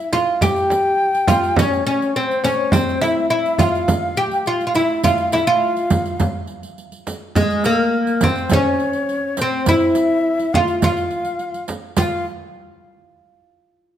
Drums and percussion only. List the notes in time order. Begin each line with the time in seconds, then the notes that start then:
0.13 riq, frame drum
0.41 riq, frame drum
0.56 riq
0.70 riq, frame drum
1.15 riq
1.27 riq, frame drum
1.43 riq
1.56 riq, frame drum
1.73 riq
1.87 riq
2.02 riq
2.17 riq
2.31 riq
2.44 riq, frame drum
2.72 riq, frame drum
2.89 riq
3.01 riq, frame drum
3.46 riq
3.58 riq, frame drum
3.75 riq
3.88 riq, frame drum
4.17 riq
4.31 riq
4.46 riq
4.61 riq
4.75 riq, frame drum
5.03 riq, frame drum
5.18 riq
5.32 riq, frame drum
5.77 riq
5.90 riq, frame drum
6.06 riq
6.20 riq, frame drum
6.47 riq
6.63 riq
6.78 riq
6.92 riq
7.07 riq, frame drum
7.35 riq, frame drum
7.50 riq
7.64 riq, frame drum
8.07 riq
8.21 riq, frame drum
8.36 riq
8.49 riq, frame drum
8.80 riq
8.93 riq
9.09 riq
9.37 riq, frame drum
9.66 riq, frame drum
9.81 riq
9.95 riq
10.39 riq
10.54 frame drum
10.68 riq
10.82 riq, frame drum
10.97 riq
11.11 riq
11.25 riq
11.39 riq
11.54 riq
11.68 riq, frame drum
11.97 riq, frame drum